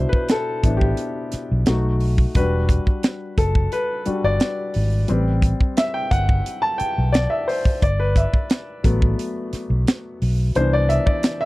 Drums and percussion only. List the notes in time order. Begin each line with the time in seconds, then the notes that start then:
0.13 kick
0.29 snare, closed hi-hat
0.64 kick, closed hi-hat
0.81 kick
0.97 closed hi-hat
1.32 snare, closed hi-hat
1.66 snare, closed hi-hat
2.00 open hi-hat
2.18 kick
2.35 kick, closed hi-hat
2.69 kick, closed hi-hat
2.87 kick
3.03 snare, closed hi-hat
3.38 kick, closed hi-hat
3.55 kick
3.72 closed hi-hat
4.06 closed hi-hat
4.40 snare, closed hi-hat
4.74 open hi-hat
5.08 closed hi-hat
5.42 kick, closed hi-hat
5.60 kick
5.77 snare, closed hi-hat
6.11 kick, closed hi-hat
6.29 kick
6.46 closed hi-hat
6.80 closed hi-hat
7.14 snare, closed hi-hat
7.49 open hi-hat
7.65 kick
7.82 kick, closed hi-hat
8.16 kick, closed hi-hat
8.34 kick
8.50 snare, closed hi-hat
8.84 kick, closed hi-hat
9.02 kick
9.19 closed hi-hat
9.53 snare, closed hi-hat
9.87 snare, closed hi-hat
10.22 open hi-hat
10.55 closed hi-hat
10.90 closed hi-hat
11.07 kick
11.23 snare, closed hi-hat